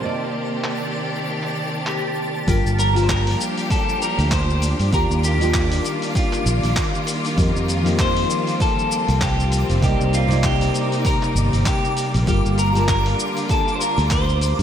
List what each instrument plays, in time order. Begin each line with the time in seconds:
Already playing: string section A#3 C4, synth texture A5
0.00 nylon-string guitar C3 A#3 D#4, string section D#3 G4 D5
0.05 nylon-string guitar D5
0.64 clap
1.43 clap
1.87 clean electric guitar G4, clap
2.46 fingered electric bass G1, string section F3 A#3 D4 G4, nylon-string guitar G3 F4 A4 A#4, clean electric guitar G4, synth texture D6, kick, open hi-hat, cabasa
2.65 fingered electric bass G1, cabasa
2.79 clean electric guitar A#4, open hi-hat, cabasa
2.93 nylon-string guitar G3 F4 A5, open hi-hat, cabasa
2.99 nylon-string guitar A#3
3.03 clean electric guitar C5
3.09 clean electric guitar A#4, kick, clap, cabasa
3.27 open hi-hat
3.41 cabasa
3.58 open hi-hat, cabasa
3.70 clean electric guitar A4, kick, open hi-hat, cabasa
3.89 cabasa
4.02 clean electric guitar A#4, cabasa
4.18 fingered electric bass D2, open hi-hat, cabasa
4.31 clean electric guitar C5, kick, clap, open hi-hat, cabasa
4.50 cabasa
4.62 open hi-hat, cabasa
4.80 fingered electric bass G2, open hi-hat, cabasa
4.91 fingered electric bass D#2, nylon-string guitar D#3 D4 F4 G4, string section D#3 G3 F4, clean electric guitar A#4, kick, open hi-hat, cabasa
5.10 fingered electric bass D#2, cabasa
5.23 clean electric guitar G4, open hi-hat, cabasa
5.38 nylon-string guitar D#3 D4 F4, open hi-hat, cabasa
5.43 nylon-string guitar G4
5.54 kick, clap, cabasa
5.72 open hi-hat, cabasa
5.85 open hi-hat, cabasa
6.02 open hi-hat, cabasa
6.15 clean electric guitar F4, kick, open hi-hat, cabasa
6.33 clap, cabasa
6.46 fingered electric bass A#1, cabasa
6.63 fingered electric bass A#1, open hi-hat, cabasa
6.76 kick, clap, open hi-hat, cabasa
6.95 cabasa
7.07 open hi-hat, cabasa
7.25 open hi-hat, cabasa
7.37 fingered electric bass F2, nylon-string guitar F3 D#4 G4 A#4, string section C4, kick, open hi-hat, cabasa
7.55 fingered electric bass F2, cabasa
7.68 open hi-hat, cabasa
7.83 nylon-string guitar F3 D#4 G4, open hi-hat, cabasa
7.88 nylon-string guitar A#3
7.99 clean electric guitar C5, kick, clap, cabasa
8.17 open hi-hat
8.30 cabasa
8.47 open hi-hat, cabasa
8.60 clean electric guitar A4, kick, open hi-hat, cabasa
8.79 cabasa
8.91 cabasa
9.08 fingered electric bass C2, open hi-hat, cabasa
9.21 clean electric guitar G4, kick, clap, open hi-hat, cabasa
9.40 cabasa
9.52 open hi-hat, cabasa
9.70 fingered electric bass F1, open hi-hat, cabasa
9.81 fingered electric bass C2, nylon-string guitar C3 A#3 D#4 D5, string section A#3 D#4, clean electric guitar G4, kick, open hi-hat, cabasa
10.00 fingered electric bass C2, cabasa
10.13 clean electric guitar F4, open hi-hat, cabasa
10.28 nylon-string guitar C3 A#3 D#4, open hi-hat, cabasa
10.33 nylon-string guitar D5
10.44 clean electric guitar G4, kick, clap, cabasa
10.61 open hi-hat, cabasa
10.74 open hi-hat, cabasa
10.92 open hi-hat, cabasa
11.05 clean electric guitar A#4, kick, open hi-hat, cabasa
11.23 clap, cabasa
11.35 fingered electric bass G1, cabasa
11.53 fingered electric bass G1, open hi-hat, cabasa
11.66 clean electric guitar G4, kick, clap, open hi-hat, cabasa
11.85 cabasa
11.97 open hi-hat, cabasa
12.14 fingered electric bass A#1, open hi-hat, cabasa
12.26 fingered electric bass G1, string section D3 F4, nylon-string guitar G3 F4 A4 A#4, clean electric guitar G4, kick, open hi-hat, cabasa
12.45 fingered electric bass G1, cabasa
12.58 clean electric guitar A#4, open hi-hat, cabasa
12.73 nylon-string guitar G3 F4 A5, open hi-hat, cabasa
12.78 nylon-string guitar A#4
12.88 clean electric guitar A#4, kick, clap, cabasa
13.06 open hi-hat
13.19 cabasa
13.37 open hi-hat, cabasa
13.49 clean electric guitar A4, kick, open hi-hat, cabasa
13.68 cabasa
13.75 clean electric guitar C5
13.81 clean electric guitar A#4, cabasa
13.98 fingered electric bass D2, open hi-hat, cabasa
14.11 clean electric guitar C5, kick, clap, open hi-hat, cabasa
14.29 cabasa
14.41 open hi-hat, cabasa
14.59 fingered electric bass G2, open hi-hat